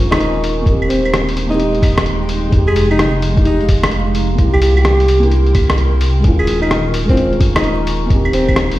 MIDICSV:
0, 0, Header, 1, 6, 480
1, 0, Start_track
1, 0, Key_signature, -4, "minor"
1, 0, Tempo, 465116
1, 683, Time_signature, 4, 2, 24, 8
1, 9071, End_track
2, 0, Start_track
2, 0, Title_t, "Ambient pad"
2, 0, Program_c, 0, 92
2, 0, Note_on_c, 0, 63, 81
2, 0, Note_on_c, 0, 70, 74
2, 0, Note_on_c, 0, 80, 75
2, 0, Note_on_c, 0, 85, 90
2, 648, Note_off_c, 0, 70, 0
2, 664, Note_off_c, 0, 63, 0
2, 664, Note_off_c, 0, 85, 0
2, 665, Note_off_c, 0, 80, 0
2, 673, Note_on_c, 0, 84, 87
2, 676, Note_on_c, 0, 63, 82
2, 676, Note_on_c, 0, 79, 76
2, 677, Note_on_c, 0, 56, 75
2, 2580, Note_off_c, 0, 79, 0
2, 2607, Note_on_c, 0, 77, 73
2, 4479, Note_off_c, 0, 84, 0
2, 4481, Note_off_c, 0, 63, 0
2, 4482, Note_off_c, 0, 56, 0
2, 4506, Note_off_c, 0, 77, 0
2, 4523, Note_on_c, 0, 84, 88
2, 4525, Note_on_c, 0, 64, 83
2, 4526, Note_on_c, 0, 70, 77
2, 4526, Note_on_c, 0, 79, 72
2, 6423, Note_off_c, 0, 84, 0
2, 6425, Note_off_c, 0, 64, 0
2, 6425, Note_off_c, 0, 79, 0
2, 6438, Note_on_c, 0, 63, 85
2, 6438, Note_on_c, 0, 85, 90
2, 6439, Note_on_c, 0, 80, 78
2, 8326, Note_off_c, 0, 70, 0
2, 8341, Note_off_c, 0, 85, 0
2, 8342, Note_off_c, 0, 80, 0
2, 8354, Note_on_c, 0, 84, 92
2, 8355, Note_on_c, 0, 56, 77
2, 8356, Note_on_c, 0, 79, 75
2, 9071, Note_off_c, 0, 56, 0
2, 9071, Note_off_c, 0, 63, 0
2, 9071, Note_off_c, 0, 79, 0
2, 9071, Note_off_c, 0, 84, 0
2, 9071, End_track
3, 0, Start_track
3, 0, Title_t, "Alto saxophone"
3, 0, Program_c, 1, 65
3, 117, Note_on_c, 1, 63, 99
3, 442, Note_off_c, 1, 63, 0
3, 919, Note_on_c, 1, 60, 94
3, 1176, Note_off_c, 1, 60, 0
3, 1553, Note_on_c, 1, 63, 95
3, 2036, Note_off_c, 1, 63, 0
3, 2758, Note_on_c, 1, 68, 93
3, 2967, Note_off_c, 1, 68, 0
3, 3004, Note_on_c, 1, 63, 92
3, 3250, Note_off_c, 1, 63, 0
3, 3566, Note_on_c, 1, 63, 90
3, 3820, Note_off_c, 1, 63, 0
3, 4679, Note_on_c, 1, 67, 87
3, 4732, Note_off_c, 1, 67, 0
3, 4774, Note_on_c, 1, 67, 76
3, 4868, Note_off_c, 1, 67, 0
3, 4920, Note_on_c, 1, 67, 92
3, 5577, Note_off_c, 1, 67, 0
3, 6597, Note_on_c, 1, 68, 92
3, 6807, Note_off_c, 1, 68, 0
3, 6830, Note_on_c, 1, 63, 92
3, 7083, Note_off_c, 1, 63, 0
3, 7322, Note_on_c, 1, 60, 97
3, 7569, Note_off_c, 1, 60, 0
3, 7798, Note_on_c, 1, 63, 95
3, 8123, Note_off_c, 1, 63, 0
3, 8602, Note_on_c, 1, 60, 96
3, 8858, Note_off_c, 1, 60, 0
3, 9071, End_track
4, 0, Start_track
4, 0, Title_t, "Felt piano"
4, 0, Program_c, 2, 0
4, 0, Control_c, 2, 64, 127
4, 0, Note_on_c, 2, 56, 98
4, 0, Note_on_c, 2, 61, 91
4, 0, Note_on_c, 2, 65, 108
4, 638, Note_on_c, 2, 58, 86
4, 644, Note_off_c, 2, 56, 0
4, 665, Note_off_c, 2, 61, 0
4, 683, Note_on_c, 2, 60, 80
4, 686, Note_off_c, 2, 65, 0
4, 698, Control_c, 2, 64, 0
4, 721, Note_on_c, 2, 67, 98
4, 852, Control_c, 2, 64, 127
4, 1499, Note_off_c, 2, 58, 0
4, 1518, Note_on_c, 2, 58, 95
4, 1521, Note_off_c, 2, 60, 0
4, 1540, Note_off_c, 2, 67, 0
4, 1558, Note_on_c, 2, 60, 90
4, 1600, Note_on_c, 2, 67, 108
4, 2560, Note_on_c, 2, 56, 89
4, 2562, Note_off_c, 2, 58, 0
4, 2582, Note_off_c, 2, 60, 0
4, 2601, Note_on_c, 2, 63, 79
4, 2603, Note_off_c, 2, 67, 0
4, 2617, Control_c, 2, 64, 0
4, 2645, Note_on_c, 2, 67, 97
4, 2816, Control_c, 2, 64, 127
4, 3420, Note_off_c, 2, 56, 0
4, 3439, Note_on_c, 2, 56, 98
4, 3440, Note_off_c, 2, 63, 0
4, 3462, Note_off_c, 2, 67, 0
4, 3479, Note_on_c, 2, 63, 87
4, 3523, Note_on_c, 2, 67, 108
4, 4483, Note_off_c, 2, 56, 0
4, 4489, Note_on_c, 2, 58, 87
4, 4503, Note_off_c, 2, 63, 0
4, 4525, Note_off_c, 2, 67, 0
4, 4529, Note_on_c, 2, 64, 79
4, 4534, Control_c, 2, 64, 0
4, 4570, Note_on_c, 2, 67, 94
4, 4735, Control_c, 2, 64, 127
4, 5344, Note_off_c, 2, 58, 0
4, 5363, Note_on_c, 2, 58, 99
4, 5364, Note_off_c, 2, 64, 0
4, 5385, Note_off_c, 2, 67, 0
4, 5404, Note_on_c, 2, 64, 89
4, 5446, Note_on_c, 2, 67, 105
4, 6398, Note_on_c, 2, 56, 88
4, 6405, Note_off_c, 2, 58, 0
4, 6425, Note_off_c, 2, 64, 0
4, 6442, Note_on_c, 2, 61, 83
4, 6446, Note_off_c, 2, 67, 0
4, 6455, Control_c, 2, 64, 0
4, 6485, Note_on_c, 2, 65, 100
4, 6663, Control_c, 2, 64, 127
4, 7258, Note_off_c, 2, 56, 0
4, 7273, Note_on_c, 2, 56, 98
4, 7281, Note_off_c, 2, 61, 0
4, 7302, Note_off_c, 2, 65, 0
4, 7314, Note_on_c, 2, 61, 88
4, 7358, Note_on_c, 2, 65, 107
4, 8320, Note_off_c, 2, 56, 0
4, 8322, Note_on_c, 2, 58, 89
4, 8340, Note_off_c, 2, 61, 0
4, 8362, Note_off_c, 2, 65, 0
4, 8363, Note_on_c, 2, 60, 81
4, 8375, Control_c, 2, 64, 0
4, 8404, Note_on_c, 2, 67, 98
4, 8579, Control_c, 2, 64, 127
4, 9071, Note_off_c, 2, 58, 0
4, 9071, Note_off_c, 2, 60, 0
4, 9071, Note_off_c, 2, 67, 0
4, 9071, End_track
5, 0, Start_track
5, 0, Title_t, "Detuned saw bass"
5, 0, Program_c, 3, 39
5, 0, Note_on_c, 3, 27, 89
5, 666, Note_off_c, 3, 27, 0
5, 683, Note_on_c, 3, 27, 91
5, 2586, Note_off_c, 3, 27, 0
5, 2603, Note_on_c, 3, 29, 90
5, 4506, Note_off_c, 3, 29, 0
5, 4524, Note_on_c, 3, 36, 88
5, 6427, Note_off_c, 3, 36, 0
5, 6444, Note_on_c, 3, 27, 93
5, 8347, Note_off_c, 3, 27, 0
5, 8360, Note_on_c, 3, 27, 92
5, 9071, Note_off_c, 3, 27, 0
5, 9071, End_track
6, 0, Start_track
6, 0, Title_t, "Drums"
6, 127, Note_on_c, 9, 37, 115
6, 127, Note_on_c, 9, 42, 59
6, 127, Note_on_c, 9, 75, 54
6, 212, Note_off_c, 9, 42, 0
6, 212, Note_on_c, 9, 42, 59
6, 230, Note_off_c, 9, 37, 0
6, 230, Note_off_c, 9, 75, 0
6, 315, Note_off_c, 9, 42, 0
6, 451, Note_on_c, 9, 46, 71
6, 555, Note_off_c, 9, 46, 0
6, 682, Note_on_c, 9, 36, 120
6, 690, Note_on_c, 9, 42, 54
6, 786, Note_off_c, 9, 36, 0
6, 793, Note_off_c, 9, 42, 0
6, 845, Note_on_c, 9, 75, 59
6, 931, Note_on_c, 9, 46, 75
6, 948, Note_off_c, 9, 75, 0
6, 1034, Note_off_c, 9, 46, 0
6, 1087, Note_on_c, 9, 75, 66
6, 1172, Note_on_c, 9, 37, 108
6, 1172, Note_on_c, 9, 42, 55
6, 1190, Note_off_c, 9, 75, 0
6, 1275, Note_off_c, 9, 37, 0
6, 1275, Note_off_c, 9, 42, 0
6, 1327, Note_on_c, 9, 46, 42
6, 1412, Note_off_c, 9, 46, 0
6, 1412, Note_on_c, 9, 46, 69
6, 1515, Note_off_c, 9, 46, 0
6, 1568, Note_on_c, 9, 42, 30
6, 1647, Note_off_c, 9, 42, 0
6, 1647, Note_on_c, 9, 42, 56
6, 1750, Note_off_c, 9, 42, 0
6, 1802, Note_on_c, 9, 42, 31
6, 1883, Note_on_c, 9, 36, 113
6, 1887, Note_on_c, 9, 46, 71
6, 1887, Note_on_c, 9, 75, 35
6, 1905, Note_off_c, 9, 42, 0
6, 1986, Note_off_c, 9, 36, 0
6, 1991, Note_off_c, 9, 46, 0
6, 1991, Note_off_c, 9, 75, 0
6, 2040, Note_on_c, 9, 37, 110
6, 2040, Note_on_c, 9, 42, 55
6, 2126, Note_off_c, 9, 42, 0
6, 2126, Note_on_c, 9, 42, 57
6, 2143, Note_off_c, 9, 37, 0
6, 2229, Note_off_c, 9, 42, 0
6, 2363, Note_on_c, 9, 46, 73
6, 2466, Note_off_c, 9, 46, 0
6, 2604, Note_on_c, 9, 36, 117
6, 2606, Note_on_c, 9, 42, 52
6, 2707, Note_off_c, 9, 36, 0
6, 2709, Note_off_c, 9, 42, 0
6, 2762, Note_on_c, 9, 75, 61
6, 2848, Note_on_c, 9, 46, 77
6, 2865, Note_off_c, 9, 75, 0
6, 2951, Note_off_c, 9, 46, 0
6, 3001, Note_on_c, 9, 75, 64
6, 3087, Note_on_c, 9, 37, 105
6, 3087, Note_on_c, 9, 42, 53
6, 3104, Note_off_c, 9, 75, 0
6, 3191, Note_off_c, 9, 37, 0
6, 3191, Note_off_c, 9, 42, 0
6, 3327, Note_on_c, 9, 46, 75
6, 3430, Note_off_c, 9, 46, 0
6, 3481, Note_on_c, 9, 36, 107
6, 3483, Note_on_c, 9, 42, 30
6, 3564, Note_off_c, 9, 42, 0
6, 3564, Note_on_c, 9, 42, 55
6, 3584, Note_off_c, 9, 36, 0
6, 3668, Note_off_c, 9, 42, 0
6, 3721, Note_on_c, 9, 42, 29
6, 3804, Note_on_c, 9, 46, 75
6, 3806, Note_on_c, 9, 36, 108
6, 3824, Note_off_c, 9, 42, 0
6, 3907, Note_off_c, 9, 46, 0
6, 3909, Note_off_c, 9, 36, 0
6, 3958, Note_on_c, 9, 37, 110
6, 3958, Note_on_c, 9, 42, 55
6, 3958, Note_on_c, 9, 75, 53
6, 4040, Note_off_c, 9, 42, 0
6, 4040, Note_on_c, 9, 42, 54
6, 4061, Note_off_c, 9, 37, 0
6, 4061, Note_off_c, 9, 75, 0
6, 4143, Note_off_c, 9, 42, 0
6, 4281, Note_on_c, 9, 46, 77
6, 4384, Note_off_c, 9, 46, 0
6, 4525, Note_on_c, 9, 36, 118
6, 4525, Note_on_c, 9, 42, 52
6, 4628, Note_off_c, 9, 42, 0
6, 4629, Note_off_c, 9, 36, 0
6, 4680, Note_on_c, 9, 75, 62
6, 4764, Note_on_c, 9, 46, 79
6, 4784, Note_off_c, 9, 75, 0
6, 4867, Note_off_c, 9, 46, 0
6, 4921, Note_on_c, 9, 75, 68
6, 5003, Note_on_c, 9, 37, 105
6, 5003, Note_on_c, 9, 42, 53
6, 5024, Note_off_c, 9, 75, 0
6, 5106, Note_off_c, 9, 37, 0
6, 5106, Note_off_c, 9, 42, 0
6, 5161, Note_on_c, 9, 46, 47
6, 5246, Note_off_c, 9, 46, 0
6, 5246, Note_on_c, 9, 46, 76
6, 5350, Note_off_c, 9, 46, 0
6, 5400, Note_on_c, 9, 42, 29
6, 5485, Note_off_c, 9, 42, 0
6, 5485, Note_on_c, 9, 42, 55
6, 5588, Note_off_c, 9, 42, 0
6, 5640, Note_on_c, 9, 42, 29
6, 5724, Note_on_c, 9, 36, 102
6, 5725, Note_on_c, 9, 46, 76
6, 5725, Note_on_c, 9, 75, 36
6, 5743, Note_off_c, 9, 42, 0
6, 5828, Note_off_c, 9, 36, 0
6, 5828, Note_off_c, 9, 46, 0
6, 5828, Note_off_c, 9, 75, 0
6, 5880, Note_on_c, 9, 37, 108
6, 5880, Note_on_c, 9, 42, 54
6, 5964, Note_off_c, 9, 42, 0
6, 5964, Note_on_c, 9, 42, 54
6, 5983, Note_off_c, 9, 37, 0
6, 6067, Note_off_c, 9, 42, 0
6, 6201, Note_on_c, 9, 46, 80
6, 6304, Note_off_c, 9, 46, 0
6, 6440, Note_on_c, 9, 42, 55
6, 6444, Note_on_c, 9, 36, 114
6, 6544, Note_off_c, 9, 42, 0
6, 6547, Note_off_c, 9, 36, 0
6, 6595, Note_on_c, 9, 75, 63
6, 6680, Note_on_c, 9, 46, 80
6, 6698, Note_off_c, 9, 75, 0
6, 6783, Note_off_c, 9, 46, 0
6, 6836, Note_on_c, 9, 75, 66
6, 6923, Note_on_c, 9, 37, 99
6, 6923, Note_on_c, 9, 42, 56
6, 6939, Note_off_c, 9, 75, 0
6, 7026, Note_off_c, 9, 37, 0
6, 7026, Note_off_c, 9, 42, 0
6, 7161, Note_on_c, 9, 46, 78
6, 7264, Note_off_c, 9, 46, 0
6, 7319, Note_on_c, 9, 36, 102
6, 7321, Note_on_c, 9, 42, 31
6, 7402, Note_off_c, 9, 42, 0
6, 7402, Note_on_c, 9, 42, 55
6, 7422, Note_off_c, 9, 36, 0
6, 7506, Note_off_c, 9, 42, 0
6, 7562, Note_on_c, 9, 42, 31
6, 7642, Note_on_c, 9, 36, 107
6, 7643, Note_on_c, 9, 46, 78
6, 7666, Note_off_c, 9, 42, 0
6, 7746, Note_off_c, 9, 36, 0
6, 7747, Note_off_c, 9, 46, 0
6, 7801, Note_on_c, 9, 37, 109
6, 7801, Note_on_c, 9, 42, 58
6, 7801, Note_on_c, 9, 75, 56
6, 7883, Note_off_c, 9, 42, 0
6, 7883, Note_on_c, 9, 42, 57
6, 7904, Note_off_c, 9, 37, 0
6, 7904, Note_off_c, 9, 75, 0
6, 7986, Note_off_c, 9, 42, 0
6, 8122, Note_on_c, 9, 46, 81
6, 8225, Note_off_c, 9, 46, 0
6, 8362, Note_on_c, 9, 36, 117
6, 8363, Note_on_c, 9, 42, 55
6, 8465, Note_off_c, 9, 36, 0
6, 8466, Note_off_c, 9, 42, 0
6, 8515, Note_on_c, 9, 75, 63
6, 8600, Note_on_c, 9, 46, 78
6, 8618, Note_off_c, 9, 75, 0
6, 8703, Note_off_c, 9, 46, 0
6, 8756, Note_on_c, 9, 75, 69
6, 8757, Note_on_c, 9, 36, 61
6, 8836, Note_on_c, 9, 37, 101
6, 8836, Note_on_c, 9, 42, 55
6, 8859, Note_off_c, 9, 75, 0
6, 8860, Note_off_c, 9, 36, 0
6, 8939, Note_off_c, 9, 37, 0
6, 8939, Note_off_c, 9, 42, 0
6, 8994, Note_on_c, 9, 46, 46
6, 9071, Note_off_c, 9, 46, 0
6, 9071, End_track
0, 0, End_of_file